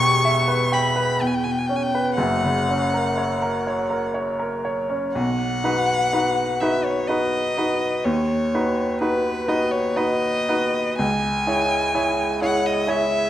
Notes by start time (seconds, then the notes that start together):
Already playing: E1 E2 B2 B3 C#6
0.01 G4
0.25 E5
0.48 B4
0.72 G5 B5
0.96 B4
1.21 E2 G5
1.27 G#5
1.34 G5
1.44 B2 G#5
1.51 G5
1.58 G#5
1.66 C#4 G5
1.76 G#5
1.83 G5
1.95 B4
2.14 F#1 F#2 F#5
2.43 C#3
2.69 C#4
2.94 A#4
3.18 C#5
3.42 A#4
3.67 C#5
3.90 A#4
4.14 C#5
4.39 A#4
4.65 C#5
4.90 C#4
5.14 B1 F#5
5.64 D#4 F#4 B4
6.13 D#4 F#4 B4
6.60 D#4 F#4 B4 E5
6.84 C#5
7.07 D#4 F#4 B4 D#5
7.58 D#4 F#4 B4
8.04 D#2 C#5
8.54 D#4 F#4 B4
9.01 D#4 F#4 B4
9.48 D#4 F#4 B4 D#5
9.71 C#5
9.96 D#4 F#4 B4 D#5
10.49 D#4 F#4 B4
10.98 C#2 G#5
11.47 E4 G#4 C#5
11.95 E4 G#4 C#5
12.41 E4 G#4 C#5 F#5
12.66 D#5
12.87 E4 G#4 C#5 E5